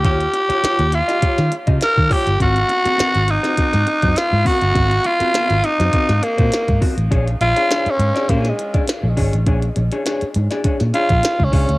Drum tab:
HH |xxxxxxxxxxxxx-ox|xxxxxxxxxxxxx-ox|xxxxxxxxxxxxxxox|xxxxxxxxxxxxx-ox|
SD |----o--o-o--o---|----o--o-o--o---|----o--o-o--o---|----o--o-o--o---|
BD |o-------o--o-oo-|o-------o--o--o-|o-------o--o-oo-|o-------o--o--o-|

HH |xxxxxxxxxxxxx-ox|
SD |----o--o-o--o---|
BD |o-------o--o-oo-|